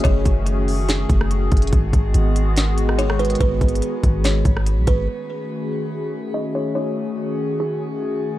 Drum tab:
HH |x-----------x-----------x-----------o-----------x-----------x-----------x-----------x--x--x--x--|x-----------x-----------x-----------x-----------x-----------x-----------x-----------x--x--x--x--|x-----------x---x---x---x-----------x-----------x-----------x-----------x-----------x-----------|------------------------------------------------------------------------------------------------|
SD |------------------------------------------------o-----------------r-----------------------------|------------------------------------------------o-----------------r-----------r-----------------|------------------------------------------------o-----------------r-----------------------------|------------------------------------------------------------------------------------------------|
BD |o-----------o-----------------------------------------------o-----------------------o-----------|o-----------o-----------------------------------------------------------------------------------|o-----------o-----------------------o-----------------------o-----------------------o-----------|------------------------------------------------------------------------------------------------|

HH |------------------------------------------------------------------------------------------------|
SD |------------------------------------------------------------------------------------------------|
BD |------------------------------------------------------------------------------------------------|